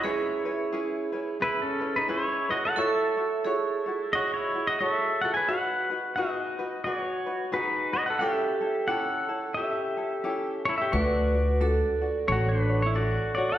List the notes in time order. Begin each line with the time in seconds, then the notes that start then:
0.04 C#4 E4 G#4 B4 C#5
0.45 C#4 E4 B4
0.72 C#4 E4 G#4 B4
1.12 C#4 E4 B4
1.40 C#4 E4 G#4 B4
1.62 C#4 A4
1.80 C#4 E4 B4
1.96 D#4 B4
2.08 C#4 E4 G#4 B4 C#5
2.49 C#4 E4 F#4 B4 D#5
2.65 A4 F#5
2.76 E4 F#4 A4 C#5 E5
2.81 A4
3.17 E4 F#4 C#5
3.45 E4 F#4 G#4 C#5
3.86 E4 F#4 C#5
4.13 E4 F#4 C#5 D#5
4.34 E4 C#5
4.54 E4 F#4 C#5
4.67 F#4 D#5
4.80 E4 F#4 A4 C#5 D#5
4.92 E5
5.21 E4 F#4 A4 C#5 F#5
5.34 B4 G#5
5.48 D#4 F#4 G#4 B4 F#5
5.90 D#4 F#4 B4
6.16 D#4 F#4 G#4 B4 D#5
6.59 D#4 F#4 B4
6.84 D#4 F#4 G#4 B4 C#5
7.26 D#4 F#4 B4
7.52 D#4 F#4 G#4 B4
7.57 D#4
7.93 D#4 F#4 B4 D#5
8.06 A4 F#5
8.19 C#4 E4 G4 A4 E5
8.61 C#4 E4 A4
8.87 C#4 E4 G4 A4 F#5
8.91 A4
9.29 C#4 E4 A4
9.54 C#4 E4 G4 A4 E5
9.97 C#4 E4 A4
10.24 C#4 E4 G4 A4
10.65 C#4 E4 A4 C#5
10.78 G4 E5
10.92 D2 D4 F#4 A4 B4 D5
11.34 D4 F#4
11.61 D4 F#4 A4
12.01 D4 F#4
12.27 A1 D4 F#4 A4 C#5
12.32 F#4
12.49 D4 B4
12.69 D4 F#4 C#5
12.82 E4 C#5
12.94 D4 F#4 A4 D5
13.35 D4 F#4 C#5 D5
13.49 A4 F#5